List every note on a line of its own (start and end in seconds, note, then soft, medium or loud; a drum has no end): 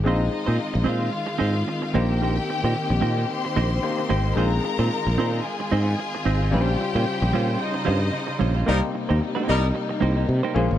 0.04 0.28 A#1 medium
0.04 6.49 D#3 medium
0.04 1.90 G#3 medium
0.04 1.93 G#3 medium
0.04 1.90 C4 medium
0.04 0.21 C4 medium
0.04 6.49 C4 medium
0.04 0.84 D#4 medium
0.04 1.91 D#4 medium
0.04 0.21 D#4 medium
0.04 1.91 F4 medium
0.04 1.93 F4 medium
0.04 0.21 G#4 medium
0.04 1.92 C5 medium
0.04 0.20 C5 medium
0.04 0.85 D#5 medium
0.33 muted clean electric guitar stroke soft
0.46 0.57 A#2 medium
0.46 0.57 C4 medium
0.46 0.57 D#4 medium
0.46 0.57 G#4 medium
0.46 0.56 C5 medium
0.58 muted clean electric guitar stroke soft
0.74 0.84 A#1 loud
0.74 muted clean electric guitar stroke soft
0.84 1.08 A#2 medium
0.84 1.00 C4 medium
0.84 1.00 D#4 medium
0.84 1.92 F4 medium
0.84 0.99 G#4 medium
0.84 0.99 C5 loud
0.84 1.92 F5 medium
1.00 1.10 C4 medium
1.00 1.10 D#4 medium
1.00 1.10 G#4 medium
1.00 1.10 C5 medium
1.11 muted clean electric guitar stroke soft
1.27 muted clean electric guitar stroke soft
1.38 1.62 G#2 medium
1.38 1.54 C4 medium
1.38 1.55 D#4 medium
1.38 1.55 G#4 medium
1.38 1.54 C5 medium
1.55 muted clean electric guitar stroke soft
1.68 muted clean electric guitar stroke soft
1.82 muted clean electric guitar stroke soft
1.94 2.38 A#1 loud
1.94 3.79 A#3 medium
1.94 4.35 A#3 medium
1.94 2.09 A#3 medium
1.94 3.79 C4 medium
1.94 2.10 D#4 medium
1.94 3.80 D#4 medium
1.94 4.35 G4 medium
1.94 2.10 G4 medium
1.94 3.27 G4 medium
1.94 3.80 G4 medium
1.94 2.09 C5 medium
1.94 3.80 C5 medium
1.94 3.27 G5 medium
2.11 2.20 A#3 soft
2.11 2.20 D#4 soft
2.11 2.20 G4 medium
2.11 2.19 C5 medium
2.22 2.37 A#3 medium
2.22 2.37 D#4 medium
2.22 2.37 G4 medium
2.22 2.36 C5 medium
2.37 muted clean electric guitar stroke soft
2.49 muted clean electric guitar stroke soft
2.64 2.73 A#2 medium
2.64 2.74 A#3 soft
2.64 2.74 D#4 medium
2.64 2.73 G4 medium
2.64 2.73 C5 medium
2.75 muted clean electric guitar stroke soft
2.90 3.00 A#1 medium
2.90 muted clean electric guitar stroke soft
3.01 3.24 A#2 medium
3.01 3.17 A#3 medium
3.01 3.17 D#4 medium
3.01 3.17 G4 medium
3.01 3.16 C5 medium
3.17 3.27 A#3 medium
3.17 3.27 D#4 medium
3.17 3.27 G4 medium
3.17 3.26 C5 medium
3.29 4.35 C5 medium
3.29 4.35 C6 medium
3.29 muted clean electric guitar stroke soft
3.45 muted clean electric guitar stroke soft
3.56 3.78 A#1 medium
3.56 3.71 A#3 medium
3.56 3.71 D#4 medium
3.56 3.70 G4 medium
3.56 3.70 C5 loud
3.72 muted clean electric guitar stroke soft
3.83 4.37 A#3 medium
3.83 4.35 C4 medium
3.83 3.91 C#4 soft
3.83 4.37 G4 soft
3.83 4.38 C5 medium
3.83 muted clean electric guitar stroke soft
3.90 4.36 D#4 soft
3.98 muted clean electric guitar stroke soft
4.09 4.32 G#1 medium
4.09 4.25 A#3 medium
4.09 4.25 D#4 medium
4.09 4.24 G4 medium
4.09 4.24 C5 medium
4.25 4.35 A#3 soft
4.25 4.35 D#4 soft
4.25 4.35 G4 medium
4.25 4.34 C5 medium
4.36 4.58 A#1 medium
4.36 6.48 G#3 medium
4.36 6.51 G#3 medium
4.36 6.48 C4 medium
4.36 4.52 C4 medium
4.36 4.51 D#4 medium
4.36 6.49 D#4 medium
4.36 8.64 F4 medium
4.36 6.49 F4 medium
4.36 4.51 G#4 loud
4.36 5.42 A#4 medium
4.36 4.51 C5 loud
4.36 6.49 C5 medium
4.36 5.43 A#5 loud
4.52 muted clean electric guitar stroke soft
4.64 muted clean electric guitar stroke soft
4.79 4.89 A#2 loud
4.79 4.89 C4 medium
4.79 4.89 D#4 medium
4.79 4.89 G#4 medium
4.79 4.88 C5 medium
4.91 muted clean electric guitar stroke soft
5.07 5.16 A#1 loud
5.07 muted clean electric guitar stroke soft
5.18 5.40 A#2 medium
5.18 5.33 C4 medium
5.18 5.32 D#4 medium
5.18 5.32 G#4 loud
5.18 5.32 C5 loud
5.33 5.43 C4 soft
5.33 5.43 D#4 soft
5.33 5.42 G#4 medium
5.33 5.42 C5 medium
5.44 6.50 G#4 medium
5.44 6.50 G#5 medium
5.44 muted clean electric guitar stroke soft
5.60 muted clean electric guitar stroke soft
5.71 5.94 G#2 loud
5.71 5.87 C4 medium
5.71 5.87 D#4 medium
5.71 5.87 G#4 medium
5.71 5.86 C5 medium
5.87 muted clean electric guitar stroke soft
5.99 muted clean electric guitar stroke soft
6.15 muted clean electric guitar stroke soft
6.25 6.53 G#1 medium
6.25 6.41 C4 medium
6.25 6.41 D#4 medium
6.25 6.41 G#4 medium
6.25 6.41 C5 medium
6.42 6.51 C4 soft
6.42 6.51 D#4 medium
6.42 6.51 G#4 soft
6.42 6.51 C5 medium
6.51 6.75 A#1 loud
6.51 8.65 C#3 medium
6.51 8.63 G3 medium
6.51 8.65 G3 medium
6.51 6.74 G3 medium
6.51 8.63 C#4 medium
6.51 6.69 C#4 medium
6.51 8.64 D#4 medium
6.51 8.64 F4 medium
6.51 6.68 F4 medium
6.51 7.58 G4 medium
6.51 6.61 B4 medium
6.51 8.65 C5 medium
6.51 6.68 C5 loud
6.51 7.58 G5 medium
6.61 8.68 C5 medium
6.69 muted clean electric guitar stroke medium
6.81 muted clean electric guitar stroke soft
6.95 7.04 A#2 loud
6.95 7.05 G3 soft
6.95 7.05 C#4 medium
6.95 7.04 F4 medium
6.95 7.04 C5 medium
7.07 muted clean electric guitar stroke soft
7.22 7.31 A#1 loud
7.22 muted clean electric guitar stroke medium
7.33 7.55 A#2 medium
7.33 7.48 G3 loud
7.33 7.48 C#4 medium
7.33 7.48 F4 loud
7.33 7.47 C5 loud
7.48 7.58 G3 soft
7.48 7.58 C#4 soft
7.48 7.58 F4 medium
7.48 7.57 C5 medium
7.60 8.65 D#4 medium
7.60 8.66 D#5 medium
7.60 muted clean electric guitar stroke soft
7.74 muted clean electric guitar stroke soft
7.85 8.09 G2 medium
7.85 8.01 G3 medium
7.85 8.00 C#4 medium
7.85 8.00 F4 loud
7.85 7.99 C5 loud
8.01 muted clean electric guitar stroke soft
8.13 muted clean electric guitar stroke soft
8.27 muted clean electric guitar stroke soft
8.39 8.62 A#1 loud
8.39 8.55 G3 medium
8.39 8.55 C#4 medium
8.39 8.55 F4 medium
8.39 8.54 C5 medium
8.55 8.65 G3 soft
8.55 8.65 C#4 soft
8.55 8.65 F4 medium
8.55 8.65 C5 medium
8.66 8.80 C2 loud
8.66 10.54 C3 medium
8.66 10.53 G3 medium
8.66 8.78 G3 medium
8.66 10.51 A#3 medium
8.66 8.82 A#3 loud
8.66 10.78 A#3 medium
8.66 10.52 C4 medium
8.66 10.54 D#4 medium
8.66 8.82 D#4 medium
8.66 10.52 D#4 medium
8.66 8.78 D#4 medium
8.66 8.81 G4 loud
8.66 10.52 G4 medium
8.66 8.78 A#4 loud
8.66 8.81 C5 loud
8.66 10.53 C5 medium
8.82 muted clean electric guitar stroke soft
8.94 muted clean electric guitar stroke soft
9.09 9.20 D#2 loud
9.09 9.19 A#3 medium
9.09 9.19 D#4 medium
9.09 9.19 G4 medium
9.09 9.18 C5 medium
9.21 muted clean electric guitar stroke soft
9.35 9.46 A#3 medium
9.35 9.47 D#4 medium
9.35 9.47 G4 medium
9.35 9.48 C5 medium
9.47 9.70 C2 medium
9.47 9.65 G3 medium
9.47 9.59 A#3 medium
9.47 9.60 D#4 medium
9.47 9.65 D#4 loud
9.47 9.60 G4 medium
9.47 9.66 A#4 loud
9.47 9.60 D#5 medium
9.63 muted clean electric guitar stroke soft
9.74 muted clean electric guitar stroke soft
9.89 muted clean electric guitar stroke soft
10.01 10.24 C2 medium
10.01 10.16 A#3 medium
10.01 10.16 D#4 medium
10.01 10.15 G4 medium
10.01 10.15 C5 loud
10.16 10.26 A#3 medium
10.16 10.26 D#4 medium
10.16 10.26 G4 medium
10.16 10.26 C5 medium
10.28 10.41 C3 loud
10.28 muted clean electric guitar stroke soft
10.43 10.55 A#3 medium
10.43 10.55 D#4 medium
10.43 10.56 G4 medium
10.43 10.55 C5 medium
10.54 10.68 A#1 loud
10.54 10.78 C#3 medium
10.54 10.67 G#3 medium
10.54 10.78 G#3 medium
10.54 10.78 A#3 medium
10.54 10.78 C#4 medium
10.54 10.67 C#4 medium
10.54 10.78 C#4 medium
10.54 10.78 F4 medium
10.54 10.67 F4 medium
10.54 10.78 G#4 medium
10.54 10.68 C5 medium
10.54 10.78 C5 medium
10.70 10.78 G#1 medium
10.70 muted clean electric guitar stroke medium